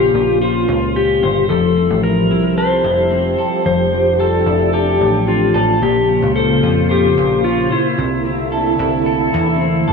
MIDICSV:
0, 0, Header, 1, 5, 480
1, 0, Start_track
1, 0, Key_signature, -1, "major"
1, 0, Tempo, 540541
1, 1332, Time_signature, 4, 2, 24, 8
1, 8817, End_track
2, 0, Start_track
2, 0, Title_t, "Electric slide guitar"
2, 0, Program_c, 0, 29
2, 0, Note_on_c, 0, 67, 78
2, 365, Note_off_c, 0, 67, 0
2, 369, Note_on_c, 0, 65, 74
2, 817, Note_off_c, 0, 65, 0
2, 855, Note_on_c, 0, 67, 76
2, 1320, Note_off_c, 0, 67, 0
2, 1324, Note_on_c, 0, 69, 78
2, 1803, Note_off_c, 0, 69, 0
2, 1807, Note_on_c, 0, 70, 82
2, 2285, Note_off_c, 0, 70, 0
2, 2289, Note_on_c, 0, 72, 86
2, 3239, Note_off_c, 0, 72, 0
2, 3249, Note_on_c, 0, 72, 92
2, 3733, Note_on_c, 0, 69, 83
2, 3745, Note_off_c, 0, 72, 0
2, 4204, Note_off_c, 0, 69, 0
2, 4208, Note_on_c, 0, 67, 74
2, 4686, Note_off_c, 0, 67, 0
2, 4690, Note_on_c, 0, 65, 76
2, 5176, Note_on_c, 0, 67, 79
2, 5185, Note_off_c, 0, 65, 0
2, 5640, Note_off_c, 0, 67, 0
2, 5644, Note_on_c, 0, 69, 83
2, 6137, Note_on_c, 0, 67, 73
2, 6143, Note_off_c, 0, 69, 0
2, 6581, Note_off_c, 0, 67, 0
2, 6611, Note_on_c, 0, 65, 81
2, 6853, Note_off_c, 0, 65, 0
2, 6856, Note_on_c, 0, 64, 67
2, 8499, Note_off_c, 0, 64, 0
2, 8817, End_track
3, 0, Start_track
3, 0, Title_t, "Clean electric guitar"
3, 0, Program_c, 1, 27
3, 0, Note_on_c, 1, 46, 64
3, 0, Note_on_c, 1, 61, 48
3, 0, Note_on_c, 1, 65, 46
3, 0, Note_on_c, 1, 72, 53
3, 122, Note_off_c, 1, 65, 0
3, 126, Note_on_c, 1, 65, 52
3, 365, Note_off_c, 1, 72, 0
3, 369, Note_on_c, 1, 72, 55
3, 605, Note_off_c, 1, 65, 0
3, 608, Note_on_c, 1, 65, 41
3, 839, Note_off_c, 1, 61, 0
3, 850, Note_on_c, 1, 61, 50
3, 1092, Note_off_c, 1, 72, 0
3, 1095, Note_on_c, 1, 72, 59
3, 1326, Note_on_c, 1, 53, 69
3, 1331, Note_off_c, 1, 46, 0
3, 1379, Note_off_c, 1, 61, 0
3, 1568, Note_on_c, 1, 60, 45
3, 2046, Note_off_c, 1, 65, 0
3, 2050, Note_on_c, 1, 64, 54
3, 2283, Note_off_c, 1, 72, 0
3, 2286, Note_on_c, 1, 69, 59
3, 2513, Note_off_c, 1, 64, 0
3, 2523, Note_on_c, 1, 64, 49
3, 2753, Note_off_c, 1, 60, 0
3, 2757, Note_on_c, 1, 60, 52
3, 2995, Note_off_c, 1, 69, 0
3, 3005, Note_on_c, 1, 69, 58
3, 3237, Note_off_c, 1, 53, 0
3, 3240, Note_on_c, 1, 53, 70
3, 3482, Note_off_c, 1, 60, 0
3, 3485, Note_on_c, 1, 60, 49
3, 3714, Note_off_c, 1, 69, 0
3, 3724, Note_on_c, 1, 69, 55
3, 3954, Note_off_c, 1, 64, 0
3, 3965, Note_on_c, 1, 64, 53
3, 4191, Note_off_c, 1, 69, 0
3, 4202, Note_on_c, 1, 69, 59
3, 4449, Note_off_c, 1, 64, 0
3, 4677, Note_off_c, 1, 60, 0
3, 4681, Note_on_c, 1, 60, 51
3, 4911, Note_off_c, 1, 69, 0
3, 4921, Note_on_c, 1, 69, 60
3, 5159, Note_on_c, 1, 46, 69
3, 5215, Note_off_c, 1, 69, 0
3, 5402, Note_off_c, 1, 60, 0
3, 5405, Note_on_c, 1, 61, 51
3, 5649, Note_on_c, 1, 72, 55
3, 5887, Note_on_c, 1, 65, 53
3, 6116, Note_off_c, 1, 72, 0
3, 6120, Note_on_c, 1, 72, 57
3, 6348, Note_off_c, 1, 53, 0
3, 6370, Note_off_c, 1, 65, 0
3, 6594, Note_off_c, 1, 61, 0
3, 6605, Note_on_c, 1, 61, 52
3, 6839, Note_off_c, 1, 72, 0
3, 6842, Note_on_c, 1, 72, 56
3, 7079, Note_off_c, 1, 46, 0
3, 7082, Note_on_c, 1, 48, 69
3, 7137, Note_off_c, 1, 61, 0
3, 7326, Note_on_c, 1, 60, 53
3, 7561, Note_off_c, 1, 72, 0
3, 7565, Note_on_c, 1, 69, 57
3, 7807, Note_on_c, 1, 64, 57
3, 8044, Note_off_c, 1, 69, 0
3, 8047, Note_on_c, 1, 69, 62
3, 8281, Note_off_c, 1, 64, 0
3, 8285, Note_on_c, 1, 64, 49
3, 8516, Note_off_c, 1, 60, 0
3, 8519, Note_on_c, 1, 60, 51
3, 8767, Note_off_c, 1, 69, 0
3, 8771, Note_on_c, 1, 69, 65
3, 8817, Note_off_c, 1, 48, 0
3, 8817, Note_off_c, 1, 60, 0
3, 8817, Note_off_c, 1, 64, 0
3, 8817, Note_off_c, 1, 69, 0
3, 8817, End_track
4, 0, Start_track
4, 0, Title_t, "Analog synth pad"
4, 0, Program_c, 2, 89
4, 0, Note_on_c, 2, 49, 70
4, 0, Note_on_c, 2, 58, 71
4, 0, Note_on_c, 2, 61, 68
4, 0, Note_on_c, 2, 65, 82
4, 1295, Note_off_c, 2, 58, 0
4, 1297, Note_off_c, 2, 49, 0
4, 1297, Note_off_c, 2, 65, 0
4, 1307, Note_off_c, 2, 61, 0
4, 1320, Note_on_c, 2, 55, 69
4, 1325, Note_on_c, 2, 64, 72
4, 1325, Note_on_c, 2, 67, 79
4, 1328, Note_on_c, 2, 53, 77
4, 3229, Note_off_c, 2, 64, 0
4, 3257, Note_on_c, 2, 62, 73
4, 5131, Note_off_c, 2, 55, 0
4, 5133, Note_off_c, 2, 67, 0
4, 5135, Note_off_c, 2, 53, 0
4, 5156, Note_off_c, 2, 62, 0
4, 5172, Note_on_c, 2, 72, 66
4, 5175, Note_on_c, 2, 49, 70
4, 5175, Note_on_c, 2, 58, 64
4, 5178, Note_on_c, 2, 65, 83
4, 7073, Note_off_c, 2, 72, 0
4, 7074, Note_off_c, 2, 49, 0
4, 7076, Note_off_c, 2, 65, 0
4, 7079, Note_on_c, 2, 57, 70
4, 7079, Note_on_c, 2, 64, 88
4, 7080, Note_on_c, 2, 50, 77
4, 8817, Note_off_c, 2, 50, 0
4, 8817, Note_off_c, 2, 57, 0
4, 8817, Note_off_c, 2, 58, 0
4, 8817, Note_off_c, 2, 64, 0
4, 8817, End_track
5, 0, Start_track
5, 0, Title_t, "Analog synth bass"
5, 0, Program_c, 3, 38
5, 0, Note_on_c, 3, 34, 92
5, 100, Note_off_c, 3, 34, 0
5, 128, Note_on_c, 3, 34, 88
5, 586, Note_off_c, 3, 34, 0
5, 609, Note_on_c, 3, 37, 87
5, 1067, Note_off_c, 3, 37, 0
5, 1091, Note_on_c, 3, 31, 75
5, 1320, Note_off_c, 3, 31, 0
5, 1333, Note_on_c, 3, 29, 81
5, 1675, Note_off_c, 3, 29, 0
5, 1692, Note_on_c, 3, 33, 87
5, 2047, Note_on_c, 3, 36, 94
5, 2060, Note_off_c, 3, 33, 0
5, 2506, Note_off_c, 3, 36, 0
5, 2526, Note_on_c, 3, 29, 88
5, 2985, Note_off_c, 3, 29, 0
5, 3249, Note_on_c, 3, 29, 87
5, 3935, Note_off_c, 3, 29, 0
5, 3965, Note_on_c, 3, 29, 88
5, 4424, Note_off_c, 3, 29, 0
5, 4449, Note_on_c, 3, 33, 73
5, 4906, Note_off_c, 3, 33, 0
5, 4927, Note_on_c, 3, 33, 81
5, 5158, Note_off_c, 3, 33, 0
5, 5169, Note_on_c, 3, 34, 94
5, 5513, Note_off_c, 3, 34, 0
5, 5528, Note_on_c, 3, 37, 96
5, 5872, Note_off_c, 3, 37, 0
5, 5890, Note_on_c, 3, 41, 84
5, 6347, Note_off_c, 3, 41, 0
5, 6373, Note_on_c, 3, 34, 83
5, 6829, Note_off_c, 3, 34, 0
5, 7092, Note_on_c, 3, 36, 94
5, 7777, Note_off_c, 3, 36, 0
5, 7809, Note_on_c, 3, 36, 86
5, 8267, Note_off_c, 3, 36, 0
5, 8293, Note_on_c, 3, 40, 86
5, 8749, Note_off_c, 3, 40, 0
5, 8776, Note_on_c, 3, 31, 83
5, 8817, Note_off_c, 3, 31, 0
5, 8817, End_track
0, 0, End_of_file